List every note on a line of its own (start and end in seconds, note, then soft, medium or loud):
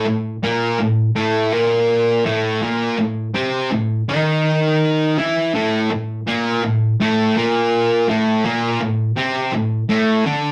0.06 0.35 A2 medium
0.43 0.78 A#2 medium
0.43 0.79 A#3 loud
0.79 1.09 A2 medium
1.15 1.52 A2 medium
1.15 1.53 A3 medium
1.52 2.24 A#2 medium
1.52 2.25 A#3 medium
2.25 2.61 A2 medium
2.25 2.61 A3 loud
2.62 2.98 A#2 medium
2.62 2.98 A#3 medium
2.98 3.28 A2 medium
3.34 3.70 C3 medium
3.34 3.71 C4 loud
3.72 4.01 A2 medium
4.09 5.17 D#3 medium
4.09 5.17 D#4 medium
5.18 5.53 E3 medium
5.18 5.54 E4 medium
5.55 5.90 A2 medium
5.55 5.90 A3 medium
5.91 6.20 A2 medium
6.27 6.62 A#2 medium
6.27 6.63 A#3 loud
6.64 6.93 A2 medium
7.00 7.35 A2 medium
7.00 7.35 A3 loud
7.36 8.08 A#2 medium
7.36 8.08 A#3 medium
8.09 8.44 A2 loud
8.09 8.44 A3 loud
8.45 8.80 A#2 medium
8.45 8.80 A#3 loud
8.80 9.10 A2 medium
9.16 9.52 C3 loud
9.16 9.52 C4 loud
9.52 9.82 A2 medium
9.89 10.24 A2 medium
9.89 10.25 A3 loud
10.25 10.52 D3 medium
10.25 10.52 D4 loud